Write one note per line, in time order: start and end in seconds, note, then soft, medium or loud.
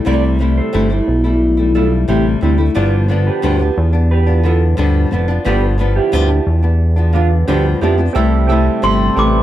0.05 0.61 C2 medium
0.05 0.38 C3 medium
0.05 0.39 G3 medium
0.05 0.40 A3 medium
0.05 0.41 E4 medium
0.05 0.23 A4 medium
0.05 0.23 D5 medium
0.39 0.72 C3 medium
0.39 0.72 G3 medium
0.39 0.73 A3 medium
0.39 0.74 E4 medium
0.58 1.05 A4 soft
0.58 1.05 C5 medium
0.73 1.01 G1 loud
0.73 0.90 C3 medium
0.73 0.91 G3 medium
0.73 0.90 A3 medium
0.73 0.88 E4 medium
0.90 1.25 G3 medium
0.90 1.24 A3 soft
0.90 1.23 E4 medium
1.08 2.05 B1 medium
1.24 1.59 G3 soft
1.24 1.58 A3 soft
1.24 1.56 E4 medium
1.57 1.74 G3 soft
1.57 1.74 A3 soft
1.57 1.75 E4 soft
1.75 2.07 G3 medium
1.75 2.07 A3 medium
1.75 2.08 E4 medium
1.75 1.92 F4 medium
1.75 1.91 A4 medium
2.08 2.36 A1 medium
2.08 2.40 C3 medium
2.08 2.41 G3 medium
2.08 2.42 A3 medium
2.08 2.25 E4 soft
2.08 2.43 E4 medium
2.08 2.25 G4 medium
2.41 2.70 D2 medium
2.41 2.59 C3 medium
2.41 2.59 G3 medium
2.41 2.58 A3 medium
2.41 2.59 C4 soft
2.41 2.59 E4 medium
2.41 2.57 E4 medium
2.58 2.75 G3 soft
2.58 2.76 A3 soft
2.58 2.75 E4 medium
2.75 3.30 G1 loud
2.75 3.09 G2 medium
2.75 3.07 D3 medium
2.75 3.08 F3 medium
2.75 3.09 B3 medium
2.75 3.10 D4 medium
2.75 2.92 B4 medium
2.75 2.92 D5 medium
3.08 3.42 D3 medium
3.08 3.42 F3 medium
3.08 3.43 B3 medium
3.08 3.43 D4 medium
3.27 3.75 G4 medium
3.27 3.74 B4 medium
3.42 3.71 D2 medium
3.42 3.60 G2 medium
3.42 3.60 D3 medium
3.42 3.60 F3 medium
3.42 3.60 B3 medium
3.42 3.58 D4 medium
3.59 3.95 F3 soft
3.59 3.93 B3 medium
3.59 3.92 D4 medium
3.78 4.75 E2 loud
3.93 4.27 B3 soft
3.93 4.25 D4 medium
4.11 4.43 G4 medium
4.11 4.43 B4 medium
4.27 4.45 F3 soft
4.27 4.44 B3 medium
4.27 4.44 D4 medium
4.44 4.77 D3 medium
4.44 4.78 B3 medium
4.44 4.78 D4 medium
4.44 4.61 F4 soft
4.44 4.61 A4 medium
4.77 5.06 D2 medium
4.77 5.11 G2 medium
4.77 5.10 D3 medium
4.77 5.11 F3 medium
4.77 5.12 B3 medium
4.77 5.12 D4 medium
5.11 5.39 F1 medium
5.11 5.28 D3 medium
5.11 5.29 F3 medium
5.11 5.28 B3 medium
5.11 5.27 D4 medium
5.28 5.45 F3 soft
5.28 5.45 B3 soft
5.28 5.45 D4 medium
5.45 6.00 G1 loud
5.45 5.79 G2 medium
5.45 5.77 D3 medium
5.45 5.78 F3 medium
5.45 5.79 B3 medium
5.45 5.80 D4 medium
5.45 5.62 G4 medium
5.45 5.62 B4 medium
5.78 6.11 D3 medium
5.78 6.12 F3 medium
5.78 6.12 B3 medium
5.78 6.13 D4 medium
5.96 6.44 E4 medium
5.96 6.44 G4 medium
6.12 6.40 D2 loud
6.12 6.29 G2 medium
6.12 6.30 D3 medium
6.12 6.30 F3 medium
6.12 6.29 B3 medium
6.12 6.27 D4 medium
6.29 6.64 F3 soft
6.29 6.63 B3 soft
6.29 6.61 D4 medium
6.47 7.44 E2 medium
6.63 6.96 B3 soft
6.63 6.95 D4 soft
6.96 7.15 F3 soft
6.96 7.13 B3 soft
6.96 7.14 D4 soft
7.13 7.47 D3 medium
7.13 7.48 B3 medium
7.13 7.30 D4 medium
7.13 7.48 D4 medium
7.13 7.30 F4 medium
7.47 7.75 D2 medium
7.47 7.81 G2 medium
7.47 7.80 D3 medium
7.47 7.81 F3 medium
7.47 7.82 B3 medium
7.47 7.64 D4 soft
7.47 7.82 D4 medium
7.47 7.64 G4 medium
7.81 8.09 F2 medium
7.81 7.98 D3 medium
7.81 7.99 F3 medium
7.81 7.98 B3 medium
7.81 7.97 D4 medium
7.81 7.98 E4 soft
7.81 7.98 G4 medium
7.98 8.15 F3 soft
7.98 8.16 B3 soft
7.98 8.15 D4 medium
8.13 8.69 C2 loud
8.13 8.47 C3 medium
8.13 8.49 G3 medium
8.13 8.49 A3 medium
8.13 8.44 C4 medium
8.13 8.50 E4 medium
8.13 8.45 G4 medium
8.13 8.45 A4 medium
8.13 8.45 E5 medium
8.47 8.81 C3 medium
8.47 8.82 G3 medium
8.47 8.82 A3 medium
8.47 9.08 C4 medium
8.47 9.08 G4 medium
8.47 9.09 A4 medium
8.47 9.09 E5 medium
8.52 8.83 E4 medium
8.82 9.10 G1 loud
8.82 9.15 C3 medium
8.82 9.16 G3 medium
8.82 9.17 A3 medium
8.82 9.17 E4 medium
8.82 8.99 C6 medium
9.15 9.43 A1 loud
9.15 9.43 C3 medium
9.15 9.43 G3 medium
9.15 9.43 A3 medium
9.15 9.43 C4 medium
9.15 9.43 G4 medium
9.15 9.43 A4 medium
9.15 9.43 B4 medium
9.15 9.43 D6 medium
9.19 9.43 E4 medium